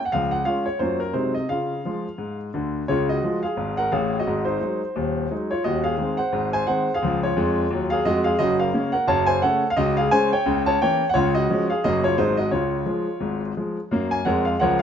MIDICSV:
0, 0, Header, 1, 2, 480
1, 0, Start_track
1, 0, Key_signature, -5, "major"
1, 0, Tempo, 344432
1, 180, Time_signature, 4, 2, 24, 8
1, 20653, End_track
2, 0, Start_track
2, 0, Title_t, "Grand piano"
2, 0, Program_c, 0, 0
2, 74, Note_on_c, 0, 78, 70
2, 170, Note_on_c, 0, 77, 79
2, 174, Note_on_c, 0, 37, 62
2, 177, Note_off_c, 0, 78, 0
2, 204, Note_on_c, 0, 53, 39
2, 413, Note_off_c, 0, 77, 0
2, 435, Note_on_c, 0, 78, 68
2, 462, Note_off_c, 0, 53, 0
2, 585, Note_off_c, 0, 37, 0
2, 616, Note_off_c, 0, 78, 0
2, 623, Note_on_c, 0, 56, 39
2, 631, Note_on_c, 0, 77, 75
2, 633, Note_on_c, 0, 65, 42
2, 639, Note_on_c, 0, 61, 43
2, 882, Note_off_c, 0, 77, 0
2, 897, Note_off_c, 0, 56, 0
2, 905, Note_off_c, 0, 65, 0
2, 908, Note_off_c, 0, 61, 0
2, 914, Note_on_c, 0, 73, 58
2, 1095, Note_off_c, 0, 73, 0
2, 1101, Note_on_c, 0, 54, 36
2, 1105, Note_on_c, 0, 72, 65
2, 1113, Note_on_c, 0, 42, 52
2, 1118, Note_on_c, 0, 61, 35
2, 1125, Note_on_c, 0, 65, 31
2, 1139, Note_on_c, 0, 58, 32
2, 1358, Note_off_c, 0, 72, 0
2, 1375, Note_off_c, 0, 54, 0
2, 1388, Note_off_c, 0, 61, 0
2, 1391, Note_on_c, 0, 70, 61
2, 1393, Note_off_c, 0, 65, 0
2, 1403, Note_off_c, 0, 58, 0
2, 1533, Note_off_c, 0, 42, 0
2, 1573, Note_off_c, 0, 70, 0
2, 1581, Note_on_c, 0, 72, 59
2, 1586, Note_on_c, 0, 48, 54
2, 1587, Note_on_c, 0, 54, 32
2, 1596, Note_on_c, 0, 56, 33
2, 1601, Note_on_c, 0, 63, 31
2, 1836, Note_off_c, 0, 72, 0
2, 1860, Note_off_c, 0, 54, 0
2, 1866, Note_off_c, 0, 56, 0
2, 1870, Note_off_c, 0, 63, 0
2, 1875, Note_on_c, 0, 75, 57
2, 2008, Note_off_c, 0, 48, 0
2, 2055, Note_off_c, 0, 75, 0
2, 2078, Note_on_c, 0, 77, 61
2, 2085, Note_on_c, 0, 49, 45
2, 2112, Note_on_c, 0, 65, 29
2, 2372, Note_off_c, 0, 65, 0
2, 2499, Note_off_c, 0, 49, 0
2, 2582, Note_on_c, 0, 53, 33
2, 2588, Note_on_c, 0, 56, 29
2, 2591, Note_on_c, 0, 65, 39
2, 2845, Note_off_c, 0, 53, 0
2, 2850, Note_off_c, 0, 56, 0
2, 2852, Note_off_c, 0, 65, 0
2, 3040, Note_on_c, 0, 44, 45
2, 3311, Note_off_c, 0, 77, 0
2, 3456, Note_off_c, 0, 44, 0
2, 3538, Note_on_c, 0, 50, 51
2, 3548, Note_on_c, 0, 38, 46
2, 3922, Note_off_c, 0, 50, 0
2, 3928, Note_off_c, 0, 38, 0
2, 4018, Note_on_c, 0, 73, 71
2, 4019, Note_on_c, 0, 49, 55
2, 4025, Note_on_c, 0, 37, 54
2, 4041, Note_on_c, 0, 65, 53
2, 4256, Note_off_c, 0, 73, 0
2, 4291, Note_off_c, 0, 65, 0
2, 4309, Note_on_c, 0, 75, 67
2, 4324, Note_on_c, 0, 66, 48
2, 4427, Note_off_c, 0, 49, 0
2, 4430, Note_off_c, 0, 37, 0
2, 4506, Note_on_c, 0, 53, 36
2, 4513, Note_on_c, 0, 56, 41
2, 4517, Note_on_c, 0, 65, 40
2, 4712, Note_off_c, 0, 75, 0
2, 4758, Note_off_c, 0, 66, 0
2, 4767, Note_off_c, 0, 53, 0
2, 4773, Note_off_c, 0, 56, 0
2, 4776, Note_off_c, 0, 65, 0
2, 4776, Note_on_c, 0, 77, 59
2, 4804, Note_on_c, 0, 68, 46
2, 4973, Note_on_c, 0, 32, 54
2, 4977, Note_on_c, 0, 44, 54
2, 5185, Note_off_c, 0, 77, 0
2, 5238, Note_off_c, 0, 68, 0
2, 5259, Note_on_c, 0, 78, 76
2, 5278, Note_on_c, 0, 70, 53
2, 5382, Note_off_c, 0, 32, 0
2, 5385, Note_off_c, 0, 44, 0
2, 5428, Note_off_c, 0, 78, 0
2, 5454, Note_off_c, 0, 70, 0
2, 5462, Note_on_c, 0, 77, 63
2, 5464, Note_on_c, 0, 45, 62
2, 5466, Note_on_c, 0, 33, 64
2, 5467, Note_on_c, 0, 68, 52
2, 5782, Note_off_c, 0, 77, 0
2, 5816, Note_off_c, 0, 68, 0
2, 5845, Note_off_c, 0, 45, 0
2, 5845, Note_on_c, 0, 75, 65
2, 5846, Note_off_c, 0, 33, 0
2, 5854, Note_on_c, 0, 66, 54
2, 5947, Note_on_c, 0, 32, 56
2, 5952, Note_on_c, 0, 44, 61
2, 6164, Note_off_c, 0, 75, 0
2, 6199, Note_off_c, 0, 66, 0
2, 6201, Note_on_c, 0, 72, 63
2, 6216, Note_on_c, 0, 63, 47
2, 6350, Note_off_c, 0, 32, 0
2, 6353, Note_off_c, 0, 44, 0
2, 6404, Note_off_c, 0, 63, 0
2, 6404, Note_on_c, 0, 54, 45
2, 6420, Note_on_c, 0, 56, 36
2, 6425, Note_on_c, 0, 63, 46
2, 6671, Note_off_c, 0, 54, 0
2, 6683, Note_off_c, 0, 56, 0
2, 6686, Note_off_c, 0, 63, 0
2, 6907, Note_on_c, 0, 39, 59
2, 6912, Note_on_c, 0, 27, 55
2, 7310, Note_off_c, 0, 39, 0
2, 7313, Note_off_c, 0, 27, 0
2, 7399, Note_on_c, 0, 56, 39
2, 7402, Note_on_c, 0, 54, 36
2, 7406, Note_on_c, 0, 63, 39
2, 7431, Note_off_c, 0, 72, 0
2, 7656, Note_off_c, 0, 56, 0
2, 7658, Note_off_c, 0, 54, 0
2, 7662, Note_off_c, 0, 63, 0
2, 7674, Note_on_c, 0, 73, 61
2, 7682, Note_on_c, 0, 65, 47
2, 7836, Note_off_c, 0, 73, 0
2, 7855, Note_off_c, 0, 65, 0
2, 7864, Note_on_c, 0, 75, 72
2, 7868, Note_on_c, 0, 27, 56
2, 7871, Note_on_c, 0, 39, 61
2, 7885, Note_on_c, 0, 66, 54
2, 8098, Note_off_c, 0, 75, 0
2, 8132, Note_off_c, 0, 66, 0
2, 8134, Note_on_c, 0, 77, 66
2, 8143, Note_on_c, 0, 68, 55
2, 8270, Note_off_c, 0, 27, 0
2, 8272, Note_off_c, 0, 39, 0
2, 8335, Note_on_c, 0, 51, 37
2, 8336, Note_on_c, 0, 56, 43
2, 8346, Note_on_c, 0, 60, 41
2, 8542, Note_off_c, 0, 77, 0
2, 8586, Note_off_c, 0, 68, 0
2, 8599, Note_off_c, 0, 51, 0
2, 8599, Note_off_c, 0, 56, 0
2, 8602, Note_on_c, 0, 78, 71
2, 8607, Note_off_c, 0, 60, 0
2, 8622, Note_on_c, 0, 72, 47
2, 8813, Note_on_c, 0, 32, 52
2, 8816, Note_on_c, 0, 44, 59
2, 9015, Note_off_c, 0, 78, 0
2, 9065, Note_off_c, 0, 72, 0
2, 9104, Note_on_c, 0, 80, 83
2, 9111, Note_on_c, 0, 72, 59
2, 9221, Note_off_c, 0, 32, 0
2, 9223, Note_off_c, 0, 44, 0
2, 9269, Note_off_c, 0, 80, 0
2, 9288, Note_off_c, 0, 72, 0
2, 9293, Note_on_c, 0, 51, 41
2, 9294, Note_on_c, 0, 78, 76
2, 9303, Note_on_c, 0, 56, 42
2, 9309, Note_on_c, 0, 72, 60
2, 9311, Note_on_c, 0, 60, 47
2, 9557, Note_off_c, 0, 51, 0
2, 9564, Note_off_c, 0, 56, 0
2, 9570, Note_off_c, 0, 60, 0
2, 9617, Note_off_c, 0, 78, 0
2, 9655, Note_off_c, 0, 72, 0
2, 9678, Note_on_c, 0, 77, 76
2, 9691, Note_on_c, 0, 68, 60
2, 9788, Note_on_c, 0, 37, 66
2, 9816, Note_on_c, 0, 53, 57
2, 9999, Note_off_c, 0, 77, 0
2, 10036, Note_off_c, 0, 68, 0
2, 10081, Note_on_c, 0, 73, 70
2, 10103, Note_on_c, 0, 65, 53
2, 10166, Note_off_c, 0, 37, 0
2, 10183, Note_off_c, 0, 53, 0
2, 10265, Note_on_c, 0, 41, 75
2, 10281, Note_on_c, 0, 56, 73
2, 10644, Note_off_c, 0, 41, 0
2, 10654, Note_off_c, 0, 56, 0
2, 10739, Note_on_c, 0, 39, 60
2, 10763, Note_on_c, 0, 54, 65
2, 10885, Note_off_c, 0, 73, 0
2, 10982, Note_off_c, 0, 65, 0
2, 11011, Note_on_c, 0, 77, 85
2, 11039, Note_on_c, 0, 68, 68
2, 11121, Note_off_c, 0, 39, 0
2, 11135, Note_off_c, 0, 54, 0
2, 11182, Note_off_c, 0, 77, 0
2, 11213, Note_off_c, 0, 68, 0
2, 11221, Note_on_c, 0, 41, 67
2, 11224, Note_on_c, 0, 75, 88
2, 11238, Note_on_c, 0, 66, 68
2, 11252, Note_on_c, 0, 56, 70
2, 11458, Note_off_c, 0, 75, 0
2, 11486, Note_on_c, 0, 77, 81
2, 11487, Note_off_c, 0, 66, 0
2, 11505, Note_on_c, 0, 68, 60
2, 11602, Note_off_c, 0, 41, 0
2, 11621, Note_off_c, 0, 56, 0
2, 11659, Note_off_c, 0, 77, 0
2, 11685, Note_off_c, 0, 68, 0
2, 11688, Note_on_c, 0, 75, 93
2, 11700, Note_on_c, 0, 42, 76
2, 11702, Note_on_c, 0, 30, 58
2, 11708, Note_on_c, 0, 66, 68
2, 11929, Note_off_c, 0, 75, 0
2, 11962, Note_off_c, 0, 66, 0
2, 11977, Note_on_c, 0, 77, 73
2, 11990, Note_on_c, 0, 70, 48
2, 12105, Note_off_c, 0, 42, 0
2, 12106, Note_off_c, 0, 30, 0
2, 12177, Note_on_c, 0, 49, 50
2, 12183, Note_on_c, 0, 58, 51
2, 12189, Note_on_c, 0, 61, 53
2, 12384, Note_off_c, 0, 77, 0
2, 12429, Note_off_c, 0, 70, 0
2, 12433, Note_on_c, 0, 78, 78
2, 12440, Note_off_c, 0, 49, 0
2, 12444, Note_off_c, 0, 58, 0
2, 12448, Note_off_c, 0, 61, 0
2, 12457, Note_on_c, 0, 70, 59
2, 12612, Note_off_c, 0, 78, 0
2, 12641, Note_off_c, 0, 70, 0
2, 12643, Note_on_c, 0, 42, 83
2, 12649, Note_on_c, 0, 30, 75
2, 12652, Note_on_c, 0, 81, 111
2, 12660, Note_on_c, 0, 73, 72
2, 12891, Note_off_c, 0, 81, 0
2, 12911, Note_on_c, 0, 80, 99
2, 12917, Note_off_c, 0, 73, 0
2, 12923, Note_on_c, 0, 72, 72
2, 13056, Note_off_c, 0, 42, 0
2, 13059, Note_off_c, 0, 30, 0
2, 13090, Note_off_c, 0, 80, 0
2, 13113, Note_off_c, 0, 72, 0
2, 13130, Note_on_c, 0, 78, 92
2, 13141, Note_on_c, 0, 49, 51
2, 13144, Note_on_c, 0, 57, 50
2, 13144, Note_on_c, 0, 69, 68
2, 13152, Note_on_c, 0, 61, 48
2, 13403, Note_off_c, 0, 49, 0
2, 13405, Note_off_c, 0, 57, 0
2, 13411, Note_off_c, 0, 61, 0
2, 13455, Note_off_c, 0, 78, 0
2, 13493, Note_off_c, 0, 69, 0
2, 13523, Note_on_c, 0, 77, 89
2, 13610, Note_on_c, 0, 75, 90
2, 13615, Note_on_c, 0, 37, 83
2, 13618, Note_off_c, 0, 77, 0
2, 13618, Note_on_c, 0, 49, 69
2, 13629, Note_on_c, 0, 66, 62
2, 13850, Note_off_c, 0, 75, 0
2, 13883, Note_off_c, 0, 66, 0
2, 13893, Note_on_c, 0, 77, 86
2, 13910, Note_on_c, 0, 68, 62
2, 14023, Note_off_c, 0, 37, 0
2, 14024, Note_off_c, 0, 49, 0
2, 14063, Note_off_c, 0, 77, 0
2, 14089, Note_off_c, 0, 68, 0
2, 14095, Note_on_c, 0, 80, 115
2, 14097, Note_on_c, 0, 49, 58
2, 14102, Note_on_c, 0, 56, 55
2, 14105, Note_on_c, 0, 72, 76
2, 14109, Note_on_c, 0, 61, 58
2, 14333, Note_off_c, 0, 80, 0
2, 14360, Note_off_c, 0, 49, 0
2, 14361, Note_off_c, 0, 72, 0
2, 14364, Note_off_c, 0, 56, 0
2, 14369, Note_off_c, 0, 61, 0
2, 14392, Note_on_c, 0, 79, 80
2, 14399, Note_on_c, 0, 73, 68
2, 14574, Note_on_c, 0, 37, 80
2, 14574, Note_on_c, 0, 49, 77
2, 14792, Note_off_c, 0, 79, 0
2, 14834, Note_off_c, 0, 73, 0
2, 14860, Note_on_c, 0, 81, 107
2, 14874, Note_on_c, 0, 73, 80
2, 14982, Note_off_c, 0, 49, 0
2, 14983, Note_off_c, 0, 37, 0
2, 15028, Note_off_c, 0, 81, 0
2, 15051, Note_off_c, 0, 73, 0
2, 15074, Note_on_c, 0, 79, 91
2, 15078, Note_on_c, 0, 52, 44
2, 15083, Note_on_c, 0, 58, 48
2, 15087, Note_on_c, 0, 73, 72
2, 15094, Note_on_c, 0, 61, 52
2, 15336, Note_off_c, 0, 52, 0
2, 15340, Note_off_c, 0, 58, 0
2, 15348, Note_off_c, 0, 61, 0
2, 15389, Note_off_c, 0, 79, 0
2, 15426, Note_off_c, 0, 73, 0
2, 15461, Note_on_c, 0, 78, 89
2, 15522, Note_on_c, 0, 73, 91
2, 15533, Note_on_c, 0, 37, 82
2, 15539, Note_on_c, 0, 49, 64
2, 15542, Note_on_c, 0, 65, 73
2, 15548, Note_off_c, 0, 78, 0
2, 15766, Note_off_c, 0, 73, 0
2, 15799, Note_off_c, 0, 65, 0
2, 15811, Note_on_c, 0, 75, 91
2, 15831, Note_on_c, 0, 66, 64
2, 15942, Note_off_c, 0, 37, 0
2, 15946, Note_off_c, 0, 49, 0
2, 16026, Note_on_c, 0, 53, 55
2, 16031, Note_on_c, 0, 56, 50
2, 16036, Note_on_c, 0, 61, 59
2, 16222, Note_off_c, 0, 75, 0
2, 16271, Note_off_c, 0, 66, 0
2, 16287, Note_off_c, 0, 53, 0
2, 16291, Note_off_c, 0, 56, 0
2, 16295, Note_off_c, 0, 61, 0
2, 16302, Note_on_c, 0, 77, 69
2, 16311, Note_on_c, 0, 68, 59
2, 16469, Note_off_c, 0, 77, 0
2, 16490, Note_off_c, 0, 68, 0
2, 16502, Note_on_c, 0, 30, 70
2, 16505, Note_on_c, 0, 75, 90
2, 16506, Note_on_c, 0, 54, 44
2, 16507, Note_on_c, 0, 42, 77
2, 16513, Note_on_c, 0, 66, 62
2, 16515, Note_on_c, 0, 58, 41
2, 16528, Note_on_c, 0, 61, 45
2, 16739, Note_off_c, 0, 75, 0
2, 16766, Note_off_c, 0, 66, 0
2, 16767, Note_off_c, 0, 54, 0
2, 16774, Note_off_c, 0, 58, 0
2, 16780, Note_on_c, 0, 73, 85
2, 16783, Note_off_c, 0, 61, 0
2, 16794, Note_on_c, 0, 65, 61
2, 16908, Note_off_c, 0, 30, 0
2, 16910, Note_off_c, 0, 42, 0
2, 16948, Note_off_c, 0, 73, 0
2, 16972, Note_off_c, 0, 65, 0
2, 16972, Note_on_c, 0, 32, 60
2, 16974, Note_on_c, 0, 54, 39
2, 16974, Note_on_c, 0, 72, 83
2, 16978, Note_on_c, 0, 44, 73
2, 16981, Note_on_c, 0, 56, 39
2, 16989, Note_on_c, 0, 63, 61
2, 17213, Note_off_c, 0, 72, 0
2, 17239, Note_off_c, 0, 54, 0
2, 17243, Note_on_c, 0, 75, 77
2, 17244, Note_off_c, 0, 56, 0
2, 17244, Note_off_c, 0, 63, 0
2, 17259, Note_on_c, 0, 66, 50
2, 17382, Note_off_c, 0, 32, 0
2, 17386, Note_off_c, 0, 44, 0
2, 17419, Note_off_c, 0, 75, 0
2, 17439, Note_on_c, 0, 73, 65
2, 17442, Note_on_c, 0, 37, 54
2, 17444, Note_off_c, 0, 66, 0
2, 17445, Note_on_c, 0, 49, 57
2, 17454, Note_on_c, 0, 65, 48
2, 17857, Note_off_c, 0, 37, 0
2, 17858, Note_off_c, 0, 49, 0
2, 17917, Note_on_c, 0, 53, 40
2, 17921, Note_on_c, 0, 56, 45
2, 18187, Note_off_c, 0, 53, 0
2, 18190, Note_off_c, 0, 56, 0
2, 18403, Note_on_c, 0, 32, 52
2, 18403, Note_on_c, 0, 44, 54
2, 18671, Note_off_c, 0, 73, 0
2, 18817, Note_off_c, 0, 32, 0
2, 18817, Note_off_c, 0, 44, 0
2, 18840, Note_off_c, 0, 65, 0
2, 18914, Note_on_c, 0, 53, 38
2, 18914, Note_on_c, 0, 56, 43
2, 19173, Note_off_c, 0, 53, 0
2, 19173, Note_off_c, 0, 56, 0
2, 19389, Note_on_c, 0, 42, 67
2, 19405, Note_on_c, 0, 58, 66
2, 19665, Note_on_c, 0, 80, 81
2, 19768, Note_off_c, 0, 42, 0
2, 19778, Note_off_c, 0, 58, 0
2, 19831, Note_off_c, 0, 80, 0
2, 19857, Note_on_c, 0, 78, 75
2, 19869, Note_on_c, 0, 41, 66
2, 19872, Note_on_c, 0, 70, 59
2, 19880, Note_on_c, 0, 73, 52
2, 19889, Note_on_c, 0, 56, 67
2, 20096, Note_off_c, 0, 78, 0
2, 20126, Note_off_c, 0, 70, 0
2, 20130, Note_off_c, 0, 73, 0
2, 20136, Note_on_c, 0, 77, 64
2, 20248, Note_off_c, 0, 41, 0
2, 20260, Note_off_c, 0, 56, 0
2, 20306, Note_off_c, 0, 77, 0
2, 20341, Note_on_c, 0, 78, 83
2, 20358, Note_on_c, 0, 37, 70
2, 20361, Note_on_c, 0, 70, 62
2, 20366, Note_on_c, 0, 73, 67
2, 20382, Note_on_c, 0, 53, 66
2, 20577, Note_off_c, 0, 78, 0
2, 20610, Note_off_c, 0, 70, 0
2, 20613, Note_off_c, 0, 73, 0
2, 20653, Note_off_c, 0, 37, 0
2, 20653, Note_off_c, 0, 53, 0
2, 20653, End_track
0, 0, End_of_file